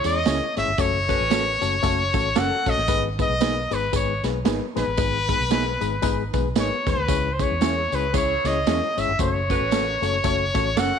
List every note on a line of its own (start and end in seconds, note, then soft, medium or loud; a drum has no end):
0.00 0.52 E4 loud
0.00 0.52 G#4 loud
0.00 0.52 C#5 loud
0.04 0.23 E2 medium
0.04 0.18 G#3 medium
0.04 0.18 C#4 medium
0.04 0.18 E4 medium
0.04 0.18 G#4 medium
0.04 0.18 C#5 medium
0.04 0.54 D#5 medium
0.04 closed hi-hat medium
0.04 tambourine medium
0.26 0.39 C#2 medium
0.26 0.45 G#3 medium
0.26 0.38 C#4 medium
0.26 0.45 C#4 medium
0.26 0.38 E4 medium
0.26 0.46 E4 medium
0.26 0.46 G#4 medium
0.26 0.39 G#4 medium
0.26 0.46 C#5 medium
0.26 snare loud
0.26 closed hi-hat loud
0.26 tambourine loud
0.57 0.66 G#1 medium
0.57 0.70 G#3 medium
0.57 0.71 C#4 medium
0.57 0.71 E4 medium
0.57 0.70 G#4 medium
0.57 0.71 C#5 medium
0.57 0.82 E5 medium
0.57 snare soft
0.57 closed hi-hat medium
0.57 tambourine medium
0.68 0.77 G1 medium
0.78 1.14 F#1 loud
0.78 0.98 A3 medium
0.78 0.98 C#4 medium
0.78 0.98 F#4 medium
0.78 0.98 A4 medium
0.78 0.98 C#5 loud
0.78 2.40 C#5 loud
0.78 kick loud
0.78 closed hi-hat medium
0.78 tambourine loud
1.08 1.23 A3 medium
1.08 1.58 C#4 medium
1.08 1.23 C#4 medium
1.08 1.58 F#4 medium
1.08 1.23 F#4 medium
1.08 1.23 A4 medium
1.08 1.58 B4 loud
1.08 1.23 C#5 medium
1.08 kick medium
1.08 closed hi-hat medium
1.08 tambourine medium
1.21 1.56 A1 medium
1.30 1.50 A3 medium
1.30 1.50 C#4 medium
1.30 1.43 C#4 medium
1.30 1.50 F#4 medium
1.30 1.44 F#4 medium
1.30 1.50 A4 medium
1.30 1.44 A4 loud
1.30 1.50 C#5 medium
1.30 snare loud
1.30 closed hi-hat medium
1.30 tambourine loud
1.61 1.80 F#1 medium
1.61 1.75 A3 medium
1.61 1.75 C#4 medium
1.61 1.75 F#4 medium
1.61 1.75 A4 medium
1.61 1.75 C#5 medium
1.61 closed hi-hat medium
1.61 tambourine medium
1.83 2.10 F#1 loud
1.83 2.02 A3 loud
1.83 2.02 C#4 loud
1.83 2.03 F#4 loud
1.83 2.02 A4 loud
1.83 2.03 C#5 loud
1.83 kick medium
1.83 closed hi-hat loud
1.83 tambourine loud
2.14 2.33 A1 medium
2.14 2.28 A3 medium
2.14 2.28 C#4 medium
2.14 2.28 F#4 medium
2.14 2.28 A4 medium
2.14 2.28 C#5 medium
2.14 kick loud
2.14 closed hi-hat medium
2.14 tambourine medium
2.35 2.49 F#1 medium
2.35 2.55 A3 medium
2.35 2.75 C#4 loud
2.35 2.48 C#4 medium
2.35 2.55 C#4 medium
2.35 2.75 F#4 loud
2.35 2.55 F#4 medium
2.35 2.49 F#4 medium
2.35 2.75 A4 loud
2.35 2.56 A4 medium
2.35 2.49 A4 medium
2.35 2.56 C#5 medium
2.35 2.71 F#5 loud
2.35 snare loud
2.35 closed hi-hat loud
2.35 tambourine loud
2.66 2.76 A#1 medium
2.66 2.80 A3 medium
2.66 2.80 C#4 medium
2.66 2.80 F#4 medium
2.66 2.80 A4 medium
2.66 2.81 C#5 medium
2.66 3.07 D#5 loud
2.66 kick medium
2.66 snare soft
2.66 closed hi-hat medium
2.66 tambourine medium
2.78 2.87 A1 medium
2.78 snare soft
2.88 3.24 G#1 loud
2.88 3.08 G#3 medium
2.88 3.08 B3 medium
2.88 3.08 D#4 medium
2.88 3.08 G#4 medium
2.88 3.08 B4 loud
2.88 kick loud
2.88 closed hi-hat medium
2.88 tambourine loud
3.19 3.33 G#3 medium
3.19 3.33 B3 medium
3.19 3.33 D#4 medium
3.19 3.33 G#4 medium
3.19 3.33 B4 medium
3.19 3.76 D#5 loud
3.19 kick medium
3.19 closed hi-hat medium
3.19 tambourine medium
3.29 3.65 B1 medium
3.40 3.60 G#3 medium
3.40 3.53 B3 medium
3.40 3.60 B3 medium
3.40 3.60 D#4 medium
3.40 3.53 D#4 medium
3.40 3.60 G#4 medium
3.40 3.54 G#4 medium
3.40 3.60 B4 medium
3.40 snare loud
3.40 closed hi-hat medium
3.40 tambourine loud
3.71 3.90 G#1 medium
3.71 3.85 G#3 medium
3.71 3.85 B3 medium
3.71 3.85 D#4 medium
3.71 3.85 G#4 medium
3.71 3.85 B4 medium
3.71 3.95 B4 medium
3.71 closed hi-hat medium
3.71 tambourine medium
3.93 4.20 G#1 loud
3.93 4.12 G#3 medium
3.93 4.12 B3 medium
3.93 4.12 D#4 medium
3.93 4.13 G#4 medium
3.93 4.13 B4 loud
3.93 4.24 C#5 medium
3.93 kick medium
3.93 closed hi-hat medium
3.93 tambourine loud
4.23 4.42 B1 medium
4.23 4.38 G#3 medium
4.23 4.38 B3 medium
4.23 4.38 D#4 medium
4.23 4.38 G#4 medium
4.23 4.38 B4 medium
4.23 snare soft
4.23 closed hi-hat medium
4.23 tambourine medium
4.45 4.59 G#1 medium
4.45 4.65 G#3 medium
4.45 4.65 B3 medium
4.45 4.58 B3 medium
4.45 4.65 D#4 medium
4.45 4.58 D#4 medium
4.45 4.65 G#4 medium
4.45 4.59 G#4 loud
4.45 4.65 B4 medium
4.45 snare loud
4.45 closed hi-hat loud
4.45 tambourine loud
4.75 4.86 A#1 medium
4.75 4.90 G#3 medium
4.75 4.90 B3 medium
4.75 4.83 B3 medium
4.75 4.90 D#4 medium
4.75 4.84 D#4 medium
4.75 4.90 G#4 medium
4.75 4.84 G#4 medium
4.75 4.90 B4 medium
4.75 6.31 B4 loud
4.75 snare soft
4.75 closed hi-hat medium
4.75 tambourine medium
4.87 4.97 A1 medium
4.97 5.34 G#1 loud
4.97 5.17 G#3 medium
4.97 5.17 B3 medium
4.97 5.18 D#4 medium
4.97 5.17 G#4 medium
4.97 5.18 B4 loud
4.97 kick loud
4.97 closed hi-hat medium
4.97 tambourine loud
5.28 5.43 G#3 medium
5.28 5.43 B3 medium
5.28 5.43 D#4 medium
5.28 5.43 G#4 medium
5.28 5.43 B4 medium
5.28 kick medium
5.28 closed hi-hat medium
5.28 tambourine medium
5.40 5.76 B1 medium
5.50 5.70 G#3 medium
5.50 5.63 B3 medium
5.50 5.70 B3 medium
5.50 5.70 D#4 medium
5.50 5.63 D#4 medium
5.50 5.70 G#4 medium
5.50 5.64 G#4 loud
5.50 5.70 B4 loud
5.50 snare loud
5.50 closed hi-hat medium
5.50 tambourine loud
5.81 6.00 G#1 medium
5.81 5.95 G#3 medium
5.81 5.95 B3 medium
5.81 5.95 D#4 medium
5.81 5.95 G#4 medium
5.81 5.95 B4 loud
5.81 closed hi-hat medium
5.81 tambourine medium
6.02 6.30 G#1 medium
6.02 6.22 G#3 loud
6.02 6.22 B3 loud
6.02 6.23 D#4 loud
6.02 6.23 G#4 loud
6.02 6.23 B4 loud
6.02 kick loud
6.02 closed hi-hat loud
6.02 tambourine loud
6.34 6.53 B1 medium
6.34 6.48 G#3 medium
6.34 6.48 B3 medium
6.34 6.48 D#4 medium
6.34 6.48 G#4 medium
6.34 6.48 B4 loud
6.34 kick loud
6.34 closed hi-hat medium
6.34 tambourine medium
6.56 6.69 G#1 medium
6.56 6.75 G#3 medium
6.56 6.68 B3 medium
6.56 6.76 B3 medium
6.56 6.76 D#4 medium
6.56 6.69 D#4 medium
6.56 6.76 G#4 medium
6.56 6.69 G#4 medium
6.56 6.76 B4 medium
6.56 snare loud
6.56 closed hi-hat loud
6.56 tambourine loud
6.60 6.91 C#5 medium
6.86 6.96 D#2 loud
6.86 7.00 G#3 medium
6.86 7.01 B3 medium
6.86 7.01 D#4 medium
6.86 7.01 G#4 medium
6.86 7.01 B4 medium
6.86 7.34 B4 medium
6.86 kick medium
6.86 snare soft
6.86 closed hi-hat medium
6.86 tambourine medium
6.98 7.07 D2 medium
7.08 7.44 C#2 loud
7.08 7.28 G#3 medium
7.08 7.28 C#4 medium
7.08 7.28 E4 medium
7.08 7.28 G#4 medium
7.08 7.28 C#5 loud
7.08 kick loud
7.08 closed hi-hat medium
7.08 tambourine loud
7.33 7.44 C5 medium
7.39 7.53 G#3 medium
7.39 7.53 C#4 medium
7.39 7.57 E4 medium
7.39 7.53 E4 medium
7.39 7.57 G#4 medium
7.39 7.53 G#4 medium
7.39 7.57 B4 medium
7.39 7.53 C#5 medium
7.39 7.96 C#5 medium
7.39 kick medium
7.39 closed hi-hat medium
7.39 tambourine medium
7.51 7.86 E2 medium
7.61 7.81 G#3 medium
7.61 7.81 C#4 medium
7.61 7.74 C#4 medium
7.61 7.81 E4 medium
7.61 7.86 E4 medium
7.61 7.74 E4 medium
7.61 7.81 G#4 medium
7.61 7.86 G#4 medium
7.61 7.75 G#4 medium
7.61 7.81 C#5 medium
7.61 7.86 C#5 medium
7.61 snare loud
7.61 closed hi-hat medium
7.61 tambourine loud
7.92 8.37 C#2 medium
7.92 8.06 G#3 medium
7.92 8.06 C#4 medium
7.92 8.06 E4 medium
7.92 8.10 E4 medium
7.92 8.06 G#4 medium
7.92 8.10 G#4 medium
7.92 8.10 B4 medium
7.92 8.15 B4 medium
7.92 8.06 C#5 medium
7.92 closed hi-hat medium
7.92 tambourine medium
8.13 8.33 G#3 medium
8.13 8.33 C#4 medium
8.13 8.93 E4 loud
8.13 8.33 E4 medium
8.13 8.93 G#4 loud
8.13 8.33 G#4 medium
8.13 8.93 C#5 loud
8.13 8.33 C#5 loud
8.13 8.48 C#5 medium
8.13 kick loud
8.13 closed hi-hat medium
8.13 tambourine loud
8.44 8.63 C#2 loud
8.44 8.59 G#3 medium
8.44 8.59 C#4 medium
8.44 8.59 E4 medium
8.44 8.59 G#4 medium
8.44 8.59 C#5 medium
8.44 9.01 D#5 loud
8.44 snare soft
8.44 closed hi-hat medium
8.44 tambourine medium
8.66 8.80 E2 medium
8.66 8.86 G#3 medium
8.66 8.86 C#4 medium
8.66 8.79 C#4 medium
8.66 8.86 E4 medium
8.66 8.79 E4 loud
8.66 8.86 G#4 medium
8.66 8.80 G#4 medium
8.66 8.86 C#5 medium
8.66 snare loud
8.66 closed hi-hat loud
8.66 tambourine medium
8.97 9.07 G#1 medium
8.97 9.11 G#3 medium
8.97 9.11 C#4 medium
8.97 9.11 E4 medium
8.97 9.11 G#4 medium
8.97 9.11 C#5 medium
8.97 9.20 E5 medium
8.97 closed hi-hat medium
8.97 tambourine medium
9.09 9.18 G1 medium
9.19 9.55 F#1 loud
9.19 9.38 A3 loud
9.19 9.38 C#4 medium
9.19 9.39 F#4 medium
9.19 9.39 A4 medium
9.19 9.39 C#5 loud
9.19 10.80 C#5 loud
9.19 kick loud
9.19 closed hi-hat medium
9.19 tambourine medium
9.50 9.64 A3 medium
9.50 9.64 C#4 medium
9.50 10.00 C#4 medium
9.50 9.64 F#4 medium
9.50 10.00 F#4 medium
9.50 9.64 A4 medium
9.50 10.00 B4 loud
9.50 9.64 C#5 medium
9.50 kick medium
9.50 closed hi-hat medium
9.50 tambourine medium
9.61 9.96 A1 medium
9.71 9.91 A3 medium
9.71 9.84 C#4 medium
9.71 9.91 C#4 medium
9.71 9.91 F#4 medium
9.71 9.84 F#4 medium
9.71 9.91 A4 medium
9.71 9.85 A4 medium
9.71 9.91 C#5 medium
9.71 snare loud
9.71 closed hi-hat medium
9.71 tambourine loud
10.02 10.21 F#1 medium
10.02 10.16 A3 medium
10.02 10.16 C#4 medium
10.02 10.16 F#4 medium
10.02 10.16 A4 medium
10.02 10.16 C#5 loud
10.02 closed hi-hat medium
10.02 tambourine medium
10.24 10.50 F#1 loud
10.24 10.43 A3 loud
10.24 10.43 C#4 loud
10.24 10.44 F#4 loud
10.24 10.44 A4 medium
10.24 10.44 C#5 loud
10.24 kick loud
10.24 closed hi-hat loud
10.24 tambourine loud
10.54 10.74 A1 medium
10.54 10.68 A3 loud
10.54 10.69 C#4 medium
10.54 10.69 F#4 medium
10.54 10.69 A4 medium
10.54 10.69 C#5 loud
10.54 kick loud
10.54 snare soft
10.54 closed hi-hat medium
10.54 tambourine medium
10.76 10.90 F#1 medium
10.76 10.96 A3 medium
10.76 10.99 C#4 loud
10.76 10.96 C#4 medium
10.76 10.89 C#4 medium
10.76 10.99 F#4 loud
10.76 10.96 F#4 medium
10.76 10.89 F#4 medium
10.76 10.99 A4 loud
10.76 10.96 A4 medium
10.76 10.90 A4 loud
10.76 10.96 C#5 medium
10.76 10.99 F#5 loud
10.76 snare loud
10.76 closed hi-hat loud
10.76 tambourine loud